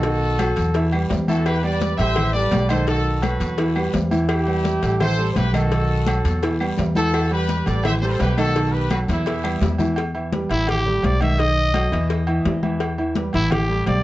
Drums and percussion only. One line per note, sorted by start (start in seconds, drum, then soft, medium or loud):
0.03 cowbell loud
0.03 low agogo medium
0.03 long guiro medium
0.22 high conga soft
0.39 cowbell medium
0.39 high conga medium
0.39 low timbale medium
0.39 low agogo loud
0.39 short guiro medium
0.39 claves medium
0.56 cowbell medium
0.56 high conga soft
0.56 low agogo medium
0.56 short guiro medium
0.74 cowbell loud
0.74 high conga soft
0.74 low agogo medium
0.74 long guiro medium
0.92 high conga soft
0.92 low agogo loud
0.92 claves medium
1.10 cowbell medium
1.10 high conga medium
1.10 low timbale medium
1.10 short guiro medium
1.28 high conga medium
1.28 low agogo medium
1.28 short guiro medium
1.46 cowbell loud
1.46 low agogo loud
1.46 long guiro medium
1.46 claves medium
1.63 high conga soft
1.63 low agogo medium
1.81 cowbell medium
1.81 high conga loud
1.81 low timbale medium
1.81 short guiro medium
1.98 cowbell medium
1.98 high conga soft
1.98 low agogo medium
1.98 short guiro medium
2.16 cowbell loud
2.16 high conga soft
2.16 low conga medium
2.16 low agogo loud
2.16 long guiro medium
2.16 claves medium
2.35 high conga soft
2.51 cowbell medium
2.51 high conga medium
2.51 low timbale loud
2.51 low agogo loud
2.51 short guiro medium
2.69 cowbell medium
2.69 high conga medium
2.69 low agogo loud
2.69 short guiro medium
2.69 claves medium
2.87 cowbell loud
2.87 low agogo medium
2.87 long guiro medium
3.06 high conga soft
3.22 cowbell medium
3.22 high conga loud
3.22 low timbale medium
3.22 low agogo loud
3.22 short guiro medium
3.22 claves medium
3.40 cowbell medium
3.40 high conga soft
3.40 low agogo medium
3.40 short guiro medium
3.58 cowbell loud
3.58 high conga soft
3.58 low agogo medium
3.58 long guiro medium
3.76 high conga soft
3.76 low agogo loud
3.76 claves medium
3.93 cowbell medium
3.93 high conga medium
3.93 low timbale medium
3.93 short guiro medium
4.11 high conga medium
4.11 low agogo medium
4.11 short guiro medium
4.29 cowbell loud
4.29 high conga soft
4.29 low agogo loud
4.29 long guiro medium
4.29 claves medium
4.47 high conga soft
4.47 low agogo medium
4.64 cowbell medium
4.64 high conga loud
4.64 low timbale medium
4.64 short guiro medium
4.82 cowbell medium
4.82 high conga soft
4.82 low agogo medium
4.82 short guiro medium
5.00 cowbell loud
5.00 high conga soft
5.00 low conga medium
5.00 low agogo loud
5.00 long guiro medium
5.00 claves medium
5.18 high conga soft
5.36 cowbell medium
5.36 high conga medium
5.36 low timbale medium
5.36 low agogo medium
5.36 short guiro medium
5.54 cowbell medium
5.54 high conga medium
5.54 low agogo loud
5.54 short guiro medium
5.54 claves medium
5.72 cowbell loud
5.72 high conga soft
5.72 low agogo medium
5.72 long guiro medium
5.89 high conga soft
6.07 cowbell medium
6.07 high conga loud
6.07 low timbale medium
6.07 low agogo loud
6.07 short guiro medium
6.07 claves medium
6.24 cowbell medium
6.24 high conga soft
6.24 low agogo medium
6.24 short guiro medium
6.42 cowbell loud
6.42 high conga soft
6.42 low agogo medium
6.42 long guiro medium
6.60 high conga soft
6.60 low agogo loud
6.60 claves medium
6.78 cowbell medium
6.78 high conga medium
6.78 low timbale medium
6.78 short guiro medium
6.95 high conga medium
6.95 low agogo medium
6.95 short guiro medium
7.13 cowbell loud
7.13 low agogo loud
7.13 long guiro medium
7.13 claves medium
7.31 high conga soft
7.31 low agogo medium
7.49 cowbell medium
7.49 high conga medium
7.49 low timbale medium
7.49 short guiro medium
7.66 cowbell medium
7.66 high conga soft
7.66 low agogo medium
7.66 short guiro medium
7.83 cowbell loud
7.83 high conga soft
7.83 low conga loud
7.83 low agogo loud
7.83 long guiro medium
7.83 claves medium
8.02 high conga soft
8.19 cowbell medium
8.19 high conga medium
8.19 low timbale loud
8.19 low agogo medium
8.19 short guiro medium
8.37 cowbell medium
8.37 high conga medium
8.37 low agogo loud
8.37 short guiro medium
8.37 claves medium
8.55 cowbell loud
8.55 low agogo medium
8.55 long guiro medium
8.73 high conga soft
8.90 cowbell medium
8.90 high conga loud
8.90 low timbale medium
8.90 low agogo loud
8.90 short guiro medium
8.90 claves medium
9.08 cowbell medium
9.08 high bongo medium
9.08 low agogo medium
9.08 short guiro medium
9.26 cowbell loud
9.26 high conga soft
9.26 low agogo medium
9.26 long guiro medium
9.44 low bongo medium
9.44 high conga soft
9.44 low agogo loud
9.44 claves medium
9.61 cowbell medium
9.61 low bongo loud
9.61 high conga medium
9.61 low timbale medium
9.61 short guiro medium
9.78 low bongo medium
9.78 high conga medium
9.78 low agogo medium
9.78 short guiro medium
9.96 cowbell loud
9.96 low agogo loud
10.15 high conga soft
10.15 low agogo medium
10.32 cowbell medium
10.32 high conga loud
10.32 low timbale medium
10.50 cowbell medium
10.50 high conga soft
10.50 low agogo medium
10.67 cowbell loud
10.67 high conga soft
10.67 low conga medium
10.67 low agogo loud
10.86 high conga soft
10.86 low conga medium
11.03 cowbell medium
11.03 high conga medium
11.03 low timbale medium
11.03 low agogo medium
11.21 cowbell medium
11.21 high conga medium
11.21 low agogo loud
11.38 cowbell loud
11.38 low agogo medium
11.57 high conga soft
11.74 cowbell medium
11.74 high conga medium
11.74 low timbale medium
11.74 low agogo loud
11.92 cowbell medium
11.92 high conga soft
11.92 low agogo medium
12.10 cowbell loud
12.10 high conga soft
12.10 low agogo medium
12.27 high conga soft
12.27 low agogo loud
12.45 cowbell medium
12.45 high conga medium
12.45 low timbale medium
12.63 high conga medium
12.63 low agogo medium
12.80 cowbell loud
12.80 low agogo loud
12.98 high conga soft
12.98 low agogo medium
13.15 cowbell medium
13.15 high conga loud
13.15 low timbale medium
13.33 cowbell medium
13.33 high conga soft
13.33 low agogo medium
13.50 cowbell loud
13.50 high conga soft
13.50 low conga loud
13.50 low agogo loud
13.69 high conga soft
13.86 cowbell medium
13.86 high conga medium
13.86 low timbale medium
13.86 low agogo medium